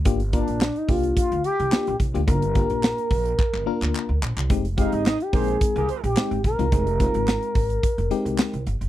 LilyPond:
<<
  \new Staff \with { instrumentName = "Analog synth lead" } { \time 4/4 \key f \dorian \tempo 4 = 108 r8 d'8. ees'16 f'8 f'8 g'4 r8 | bes'2.~ bes'8 r8 | r8 ees'8. g'16 aes'8. aes'8 g'8. bes'8~ | bes'2.~ bes'8 r8 | }
  \new Staff \with { instrumentName = "Horn section" } { \time 4/4 \key f \dorian r1 | r1 | r8 <c' f' aes' f''>16 <c' ees' aes' ees''>16 <c' ees' aes' ees''>16 r16 <aes c' g' c''>8 r16 <bes g' bes'>16 <aes c' g' c''>16 r4 r16 | r1 | }
  \new Staff \with { instrumentName = "FM electric piano" } { \time 4/4 \key f \dorian <bes d' f' g'>16 r16 <bes d' f' bes'>8 r8 <bes d' f' g'>8. r8. <bes d' f' g'>8 r16 <bes d' f' g'>16 | <bes d' f' bes'>16 r16 <bes d' f' g'>4 r4 <bes d' f' bes'>8. r8. | <aes c' ees' g'>16 r16 <aes c' ees' g'>8 r8 <aes c' ees' bes'>8. r8. <aes c' ees' g'>8 r16 <aes c' ees' f'>16 | <aes c' ees' aes'>16 r16 <aes c' ees' f'>4 r4 <aes c' ees' g'>8. r8. | }
  \new Staff \with { instrumentName = "Upright bass" } { \clef bass \time 4/4 \key f \dorian g,,8. bes,,8 r16 c,8 r16 d,16 r16 c,16 r16 bes,,16 c,16 d,16 | g,,8. bes,,8 r16 bes,,8 r16 g,,16 r16 d,16 r16 d,16 bes,,16 c,16 | f,,8. aes,,8 r16 bes,,8 r16 c,16 r16 bes,,16 r16 aes,,16 bes,,16 c,16 | f,,8. aes,,8 r16 aes,,8 r16 f,,16 r16 c,16 r16 c,16 g,,16 f,,16 | }
  \new DrumStaff \with { instrumentName = "Drums" } \drummode { \time 4/4 <hh bd>16 hh16 <hh bd>16 hh16 <hc sn>16 hh16 <hho bd>16 hh16 <hh bd>16 hh16 hh16 hh16 <hc sn>16 hh16 <hh bd>16 hh16 | <hh bd>16 hh16 <hh bd>16 hh16 <hc sn>16 hh16 <hho bd>16 hh16 <hc bd>16 hc8 hc16 hc8 hc16 hc16 | <hh bd>16 hh16 <hh bd>16 hh16 <hc sn>16 hh16 <hho bd>16 hh16 <hh bd>16 hh16 hh16 hh16 <hc sn>16 hh16 <hh bd>16 hh16 | <hh bd>16 hh16 <hh bd>16 hh16 <hc sn>16 hh16 <hho bd>16 hh16 <hh bd>16 hh16 hh16 hh16 <hc sn>16 hh16 hh16 hh16 | }
>>